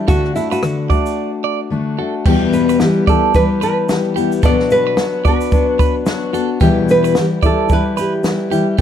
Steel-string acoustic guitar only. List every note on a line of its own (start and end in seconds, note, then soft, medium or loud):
0.08 0.35 D3 medium
0.08 0.36 A3 medium
0.08 0.35 D4 medium
0.08 0.34 F#4 loud
0.35 0.62 A3 soft
0.35 0.63 D4 soft
0.35 0.62 F#4 medium
0.62 0.90 D3 medium
0.62 0.90 A3 medium
0.62 0.89 D4 medium
0.62 0.88 F#4 medium
0.89 1.70 A3 soft
0.89 1.71 D4 medium
0.89 1.71 F#4 medium
1.70 1.98 D3 medium
1.70 1.99 A3 medium
1.70 1.98 D4 medium
1.70 1.97 F#4 medium
1.98 2.26 A3 soft
1.98 2.26 D4 medium
1.98 2.26 F#4 medium
2.26 2.80 E2 loud
2.26 2.80 B2 loud
2.26 2.79 E3 loud
2.26 2.80 G3 loud
2.26 2.81 B3 loud
2.26 2.81 G4 loud
2.80 3.07 E3 medium
2.80 3.07 G3 medium
2.80 3.06 B3 medium
2.80 3.06 G4 medium
3.07 3.33 E3 soft
3.07 3.34 G3 soft
3.07 3.34 B3 soft
3.07 3.34 G4 medium
3.34 3.87 E3 medium
3.34 3.88 G3 medium
3.34 3.90 B3 medium
3.34 3.90 G4 medium
3.89 4.16 E3 medium
3.89 4.16 G3 medium
3.89 4.15 B3 medium
3.89 4.14 G4 medium
4.16 4.43 E3 soft
4.16 4.44 G3 soft
4.16 4.43 B3 medium
4.16 4.43 G4 medium
4.43 4.98 B2 medium
4.43 4.96 F#3 medium
4.43 4.98 B3 medium
4.43 4.98 D4 medium
4.43 4.98 F#4 loud
4.97 5.25 F#3 medium
4.97 5.25 B3 medium
4.97 5.24 D4 medium
4.97 5.23 F#4 medium
5.25 5.52 B3 soft
5.25 5.52 D4 medium
5.25 5.52 F#4 medium
5.52 6.05 F#3 medium
5.52 6.06 B3 medium
5.52 6.06 D4 medium
5.52 6.07 F#4 medium
6.06 6.33 F#3 medium
6.06 6.34 B3 medium
6.06 6.33 D4 medium
6.06 6.32 F#4 medium
6.33 6.61 B3 medium
6.33 6.61 D4 medium
6.33 6.61 F#4 medium
6.61 7.15 E2 loud
6.61 7.15 B2 loud
6.61 7.13 E3 loud
6.61 7.15 G3 loud
6.61 7.15 E4 loud
6.61 7.17 G4 loud
7.15 7.42 E3 medium
7.15 7.43 G3 medium
7.15 7.42 E4 medium
7.15 7.41 G4 medium
7.42 7.68 E3 soft
7.42 7.69 G3 soft
7.42 7.70 E4 medium
7.42 7.70 G4 soft
7.69 8.22 E3 medium
7.69 8.24 G3 medium
7.69 8.24 E4 medium
7.69 8.25 G4 medium
8.23 8.51 E3 medium
8.23 8.51 G3 medium
8.23 8.50 E4 medium
8.23 8.49 G4 medium
8.50 8.78 E3 soft
8.50 8.78 G3 medium
8.50 8.79 E4 medium
8.50 8.78 G4 medium
8.78 8.81 G2 medium